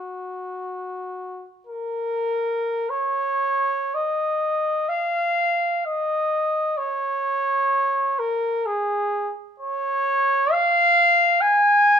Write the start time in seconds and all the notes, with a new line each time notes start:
Already playing: F#4
1.67 A#4
2.90 C#5
3.95 D#5
4.89 F5
5.86 D#5
6.78 C#5
8.19 A#4
8.66 G#4
9.60 C#5
10.52 F5
11.41 G#5